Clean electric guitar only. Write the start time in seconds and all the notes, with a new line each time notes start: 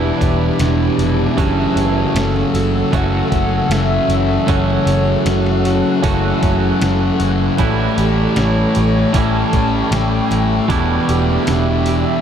Already playing: E2 B2 E3 G3 D4 E4
1.37 F#2 C#3 E3 A3 C#4 F#4
2.92 F#2 C#3 E3 A3 C#4 F#4
4.47 F#2 C#3 E3 A3 C#4 F#4
6.02 F#2 C#3 E3 A3 C#4 F#4
7.59 A2 E3 G3 C#4 E4
9.13 A2 E3 G3 C#4 E4
10.68 E2 B2 E3 G3 D4 E4